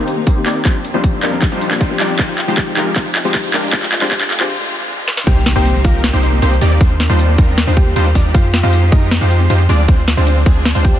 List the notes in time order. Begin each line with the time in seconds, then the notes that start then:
Already playing: C2 C3 D#3 A#3 D4 D#4, riser
0.00 A#3 C4 D#4 G4 C5
0.08 D#4, closed hi-hat
0.17 A#3
0.27 A#3 C4 D#4 G4 C5, kick, closed hi-hat
0.36 D#3 A#3 C4 G4
0.46 A#3 C4 D#4 G4 D5, clap, open hi-hat
0.56 C4
0.64 D#2 A#2 F3 G3 A#3 C4 D4 D#4 F4 G4 C5, kick, clap, closed hi-hat
0.75 D4
0.84 D4, closed hi-hat
0.93 F3 G3 A#3 C4 D4 D#4 F4 G4 C5
1.04 C4, kick, closed hi-hat
1.13 A#3
1.22 F3 G3 C4 D4 D#4 F4 G4 A#4, clap, closed hi-hat
1.33 C4
1.42 A#3, kick, clap, closed hi-hat
1.51 F3 G3 C4 D4 D#4 F4 G4 C5
1.61 D4, closed hi-hat
1.71 A#3, clap
1.81 G3 D4 D#4 F4 C5, kick, closed hi-hat
1.89 F3 A#3 C4 D4 G4
2.00 G3 D4 D#4 F4 D5, clap, open hi-hat
2.10 C4
2.18 F2 C3 F3 G#3 C4 D#4 F4 C5, kick, clap, closed hi-hat
2.29 F4
2.38 F4, clap, closed hi-hat
2.47 F3 G#3 C4 D#4 F4 G4 C5
2.58 D#4, kick, clap, closed hi-hat
2.67 C4
2.76 F3 G#3 D#4 F4 G4 A#4, clap, closed hi-hat
2.86 D#4
2.95 F3 G#3 C4 D#4 F4 G4 C5, kick, clap, closed hi-hat
3.06 F4
3.15 F4, clap, closed hi-hat
3.24 F3 G#3 C4 D#4 F4 G4 C5
3.35 D#4, kick, clap, closed hi-hat
3.44 C4
3.53 D2 D3 F3 G#3 C4 D4 F4 G4 A#4, clap, open hi-hat
3.63 D4
3.72 F3 G#3 C4 D4 G4 C5, kick, clap, closed hi-hat
3.83 F4, clap
3.92 F4, clap, closed hi-hat
4.01 F3 G#3 C4 D4 F4 G4 C5, clap
4.10 F3 G#3 D4 F4 G4 C5, kick, clap, closed hi-hat
4.21 F4, clap
4.31 F4, clap, closed hi-hat
4.39 F3 G#3 C4 D4 F4 G4 C5, clap
5.08 snare
5.17 snare
5.27 C2 C3 G3 A#3 C4 D4 D#4 G4 C5 G5, kick, closed hi-hat, crash, impact
5.36 D#4
5.46 D#4, snare, closed hi-hat
5.56 C2 A#3 C4 D#4 G4 C5 G5
5.65 C4, closed hi-hat
5.75 A#3
5.84 A#3 C4 D#4 F4 G4 A#4 F5, kick, closed hi-hat
5.94 C4
6.04 A#3, snare, closed hi-hat
6.13 C2 A#3 C4 D#4 G4 C5
6.23 D#4, closed hi-hat
6.33 A#3
6.42 C2 A#3 C4 D#4 G4 C5, closed hi-hat
6.52 A#3
6.61 D#2 A#3 C4 D#4 G4 D5, open hi-hat
6.71 C4
6.81 D#3 G3 A#3 C4 D4 F4 G4 C5, kick, closed hi-hat
6.90 D4
7.00 D4, snare, closed hi-hat
7.09 D#2 G3 A#3 D4 D#4 F4 C5
7.19 C4, closed hi-hat
7.29 A#3
7.38 D#2 G3 D4 D#4 F4 A#4, kick, closed hi-hat
7.48 C4
7.58 A#3, snare, closed hi-hat
7.67 D#2 G3 D4 D#4 F4 C5
7.77 D4 G4 G5, kick, closed hi-hat
7.87 A#3
7.96 D#2 G3 C4 D4 D#4 F4 C5, closed hi-hat
8.06 A#3
8.15 D#2 G3 D4 D#4 F4 D5, kick, open hi-hat
8.25 C4
8.34 F2 F3 G#3 C4 D#4 F4 G4 G#4 C5 F5, kick, closed hi-hat
8.44 F4
8.54 F4, snare, closed hi-hat
8.63 F2 G#3 C4 D#4 F4 G4 C5 F5
8.73 D#4, closed hi-hat
8.83 C4
8.92 F2 G#3 D#4 F4 G4 A#4 D#5, kick, closed hi-hat
9.02 D#4
9.11 C4, snare, closed hi-hat
9.21 F2 G#3 D#4 F4 G4 C5
9.31 F4, closed hi-hat
9.41 C4
9.50 F2 G#3 D#4 F4 G4 C5, closed hi-hat
9.60 C4
9.69 D2 G#3 C4 D4 F4 G#4 D5, open hi-hat
9.79 D4
9.88 D2 G#3 C4 D4 F4 C5, kick, closed hi-hat
9.98 F4
10.08 F4, snare, closed hi-hat
10.17 D2 G#3 C4 D4 F4 C5
10.27 D4, closed hi-hat
10.37 C4
10.46 D2 G#3 C4 D4 F4 G#4, kick, closed hi-hat
10.56 D4
10.65 C4, snare, closed hi-hat
10.75 D2 G#3 C4 D4 F4 C5
10.84 F4 G4 G5, kick, closed hi-hat
10.94 D5